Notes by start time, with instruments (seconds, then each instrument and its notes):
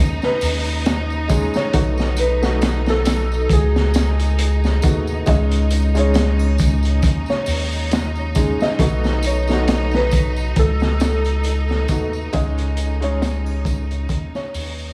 Already playing: sub bass D#2, felt piano G#3 C#4 D#4 G#4, string section D#4
0.22 felt piano B4, snare, tambourine
0.41 sub bass D#2, open hi-hat, tambourine
0.65 tambourine
0.85 snare, closed hi-hat, tambourine
1.10 tambourine
1.28 felt piano G#3 C#4 D#4 G#4, kick, closed hi-hat, tambourine
1.54 felt piano C#5, snare, tambourine
1.73 sub bass B1, felt piano A3 B3 D#4 F#4, kick, closed hi-hat, tambourine
1.98 snare, tambourine
2.17 felt piano B4, closed hi-hat, tambourine
2.42 felt piano A3 B3 D#4 F#4, snare, tambourine
2.61 snare, closed hi-hat, tambourine
2.86 felt piano A4, snare, tambourine
3.05 snare, closed hi-hat, tambourine
3.32 tambourine
3.49 sub bass C#2, felt piano G#4, kick, closed hi-hat, tambourine
3.76 snare, tambourine
3.94 snare, closed hi-hat, tambourine
4.19 closed hi-hat, tambourine
4.39 closed hi-hat, tambourine
4.64 snare, tambourine
4.82 sub bass D#2, felt piano A3 B3 D#4 F#4, kick, closed hi-hat, tambourine
5.07 tambourine
5.26 sub bass C#2, felt piano G#3 C#4 D#4 G#4 D#5, string section D#4, kick, closed hi-hat, tambourine
5.51 closed hi-hat, tambourine
5.70 closed hi-hat, tambourine
5.95 felt piano G#3 C#4 D#4 G#4, closed hi-hat, tambourine
5.99 felt piano C#5
6.14 snare, closed hi-hat, tambourine
6.39 tambourine, triangle
6.58 kick, closed hi-hat, tambourine
6.83 closed hi-hat, tambourine
7.02 sub bass D#2, kick, closed hi-hat, tambourine
7.26 felt piano C#5, tambourine
7.30 snare
7.46 sub bass D#2, open hi-hat, tambourine
7.72 tambourine
7.91 snare, closed hi-hat, tambourine
8.15 tambourine
8.35 felt piano G#3 C#4 D#4 G#4, kick, closed hi-hat, tambourine
8.60 felt piano D#5, snare, tambourine
8.79 sub bass B1, felt piano A3 B3 D#4 F#4, kick, closed hi-hat, tambourine
9.04 snare, tambourine
9.23 felt piano C#5, closed hi-hat, tambourine
9.47 felt piano A3 B3 D#4, snare, tambourine
9.52 felt piano F#4
9.68 snare, closed hi-hat, tambourine
9.91 felt piano B4, snare, tambourine
10.11 kick, closed hi-hat, tambourine
10.36 tambourine
10.56 sub bass C#2, felt piano A4, kick, closed hi-hat, tambourine
10.80 snare, tambourine
11.00 snare, closed hi-hat, tambourine
11.25 closed hi-hat, tambourine
11.44 closed hi-hat, tambourine
11.69 snare, tambourine
11.88 sub bass D#2, felt piano A3 B3 D#4 F#4, kick, closed hi-hat, tambourine
12.13 tambourine
12.33 sub bass C#2, felt piano G#3 C#4 D#4 G#4 D#5, kick, closed hi-hat, tambourine
12.58 closed hi-hat, tambourine
12.77 closed hi-hat, tambourine
13.01 felt piano G#3 C#4 D#4 G#4 C#5, closed hi-hat, tambourine
13.22 snare, closed hi-hat, tambourine
13.46 tambourine, triangle
13.65 kick, closed hi-hat, tambourine
13.91 closed hi-hat, tambourine
14.09 sub bass D#2, kick, closed hi-hat, tambourine
14.35 felt piano C#5, snare, tambourine
14.54 sub bass D#2, open hi-hat, tambourine
14.78 tambourine